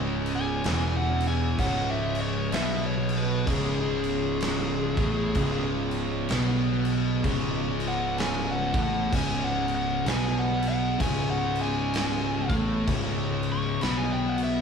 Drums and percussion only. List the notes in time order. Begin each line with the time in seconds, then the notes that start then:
0.26 crash
0.64 snare, crash
1.20 crash
1.59 kick, crash
2.15 crash
2.52 snare, crash
3.09 crash
3.47 kick, crash
4.04 crash
4.41 snare, crash
4.97 kick, crash
5.35 kick, crash
5.91 crash
6.29 snare, crash
6.85 crash
7.24 kick, crash
7.80 crash
8.18 snare, crash
8.74 kick, crash
9.13 kick, crash
9.68 crash
10.06 snare, crash
10.62 crash
11.00 kick, crash
11.55 crash
11.94 snare, crash
12.50 kick, crash
12.88 kick, crash
13.43 crash
13.81 snare, crash
14.38 crash